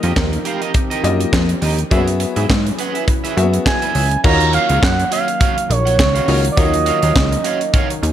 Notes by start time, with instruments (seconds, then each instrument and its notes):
Already playing: analog synth pad F3 C4 D#4 G4 A#4, grand piano A#3 F4 G4 D#5
0.03 analog synth bass F2, clean electric guitar G4 A#4 D#5, closed hi-hat
0.16 analog synth bass D#2, muted clean electric guitar stroke, kick, snare, clap
0.32 muted clean electric guitar stroke, closed hi-hat
0.45 clean electric guitar G4 A#4 F5, closed hi-hat
0.61 clean electric guitar G4 A#4 D#5, closed hi-hat
0.74 muted clean electric guitar stroke, kick, closed hi-hat
0.90 clean electric guitar G4 A#4 D#5, closed hi-hat
1.03 analog synth bass F#2, grand piano A#3 F4 G4 D#5, muted clean electric guitar stroke, closed hi-hat
1.20 muted clean electric guitar stroke, closed hi-hat
1.33 analog synth bass F2, kick, snare, clap
1.49 muted clean electric guitar stroke, closed hi-hat
1.62 analog synth bass D#2, clean electric guitar G4 A#4 D#5, open hi-hat
1.78 muted clean electric guitar stroke, closed hi-hat
1.91 analog synth bass F#2, analog synth pad F#3 C#4 E4 G#4 B4, grand piano A#3 F#4 G#4 E5, clean electric guitar G#4 B4 E5, kick, closed hi-hat
1.97 grand piano B3
2.07 muted clean electric guitar stroke, closed hi-hat
2.20 muted clean electric guitar stroke, closed hi-hat
2.36 analog synth bass G#2, clean electric guitar G#4 B4 E5, closed hi-hat
2.49 analog synth bass G#2, muted clean electric guitar stroke, kick, snare, clap
2.66 muted clean electric guitar stroke, closed hi-hat
2.78 clean electric guitar G#4 B4 F#5, closed hi-hat
2.94 clean electric guitar G#4 B4 E5, closed hi-hat
3.07 muted clean electric guitar stroke, kick, closed hi-hat
3.24 clean electric guitar G#4 B4 E5, closed hi-hat
3.37 analog synth bass F#2, grand piano A#3 F#4 G#4 E5, muted clean electric guitar stroke, closed hi-hat
3.43 grand piano B3
3.53 muted clean electric guitar stroke, closed hi-hat
3.66 analog synth lead G#5, muted clean electric guitar stroke, kick, snare, clap
3.82 clean electric guitar G#4 B4 E5, closed hi-hat
3.95 analog synth bass C#2, clean electric guitar G#4 B4 E5, open hi-hat
4.11 muted clean electric guitar stroke, closed hi-hat
4.24 analog synth bass D#2, analog synth pad D#3 F#3 A#3 C#4 F5, grand piano A#3 D#4 F4 F#4 C#5, clean electric guitar F#4 C#5 F5, analog synth lead A#5, kick, crash
4.40 closed hi-hat
4.53 clean electric guitar F#4 C#5 F5, analog synth lead F5, closed hi-hat
4.69 analog synth bass C#2, clean electric guitar F#4 C#5 F5, closed hi-hat
4.83 analog synth bass F#2, analog synth lead F#5, kick, snare, clap
4.99 muted clean electric guitar stroke, closed hi-hat
5.11 clean electric guitar F#4 C#5 F5, analog synth lead F5, closed hi-hat
5.28 muted clean electric guitar stroke, closed hi-hat
5.40 clean electric guitar F#4 C#5 F5, kick, closed hi-hat
5.57 muted clean electric guitar stroke, closed hi-hat
5.69 analog synth bass A#1, analog synth lead C#5, muted clean electric guitar stroke, closed hi-hat
5.85 clean electric guitar F#4 C#5 F#5, closed hi-hat
5.98 analog synth bass C#2, analog synth lead C#5, muted clean electric guitar stroke, kick, snare, clap
6.15 clean electric guitar F#4 C#5 F5, closed hi-hat
6.27 analog synth bass C#2, grand piano A#3 D#4 F4 F#4 C#5, clean electric guitar F#4 C#5 F5, open hi-hat
6.44 muted clean electric guitar stroke, closed hi-hat
6.52 analog synth lead D5
6.57 analog synth bass D#2, grand piano A#3 D#4 F4 F#4 C#5, analog synth pad D#4, clean electric guitar F#4 C#5 F5, analog synth lead D#5, kick, closed hi-hat
6.74 closed hi-hat
6.86 clean electric guitar F#4 C#5 F5, closed hi-hat
7.02 analog synth bass D#2, clean electric guitar F#4 C#5 F5, closed hi-hat
7.16 analog synth bass C#2, kick, snare, clap
7.31 muted clean electric guitar stroke, closed hi-hat
7.44 clean electric guitar F#4 C#5 F5, closed hi-hat
7.61 muted clean electric guitar stroke, closed hi-hat
7.73 clean electric guitar F#4 C#5 F5, kick, closed hi-hat
7.90 muted clean electric guitar stroke, closed hi-hat
8.03 analog synth bass D#2, muted clean electric guitar stroke, closed hi-hat